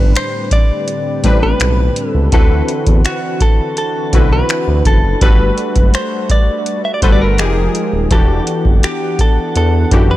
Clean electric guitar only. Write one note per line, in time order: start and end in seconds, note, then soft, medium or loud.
0.00 0.12 B4 medium
0.17 0.52 C5 medium
0.53 1.39 D5 medium
1.43 2.09 B4 medium
2.09 2.33 A4 medium
2.34 3.01 A4 medium
3.06 3.42 F#4 medium
3.42 3.77 A4 medium
3.78 4.28 A4 medium
4.33 4.86 B4 medium
4.87 5.22 A4 medium
5.22 5.95 B4 medium
5.95 6.28 C5 medium
6.31 6.81 D5 loud
6.85 6.94 E5 medium
6.94 7.02 D5 medium
7.03 7.12 C5 medium
7.12 7.21 D5 medium
7.22 8.07 A#4 medium
8.12 8.86 A4 medium
8.84 9.21 G4 medium
9.21 9.54 A4 medium
9.57 10.07 A4 medium
10.11 10.17 B4 medium